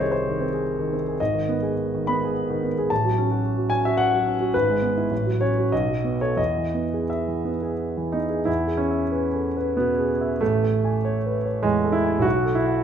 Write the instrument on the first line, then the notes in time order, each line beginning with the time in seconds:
grand piano
Already playing: C2 D#3 C4 C5 D#5
0.01 G#4 C#5
0.12 C5
0.27 D#3
0.41 C4
0.53 G#4
0.79 D#3
0.93 C4
1.08 G#4
1.20 G#1 D#5
1.34 D#3
1.49 B3
1.63 G#4
1.95 D#3
2.07 B3 B5
2.23 G#4
2.50 D#3
2.64 B3
2.78 G#4
2.90 A1 A5
3.05 F#3
3.18 C#4
3.31 F#4
3.58 F#3
3.70 C#4 G#5
3.85 F#4 E5
3.97 F#5
4.13 F#3
4.26 C#4
4.40 F#4
4.54 G#1 B4
4.70 G#3
4.83 B3
4.97 E4
5.11 A1
5.26 F#3
5.41 C#4 C#5
5.58 F#4
5.72 B1 D#5
5.88 F#3
6.04 B3
6.21 A4 C#5
6.36 E2 D#5
6.57 E3
6.74 B3
6.94 G#4
7.10 E5
7.28 E3
7.45 B3
7.62 G#4
7.97 E3
8.12 B3 D#4
8.30 G#4
8.45 E2 E4
8.67 G#4
8.77 C#4
8.91 E5
9.12 B4
9.34 A4
9.57 B4
9.77 B2 B3
9.99 G#4
10.21 E5
10.41 A1 A3
10.64 A4
10.85 G#5
11.05 C#5
11.26 B4
11.45 C#5
11.63 E2 G#3
11.85 A4
11.92 E4
12.05 G#5
12.19 B1 F#4
12.46 A4
12.55 E4
12.66 F#5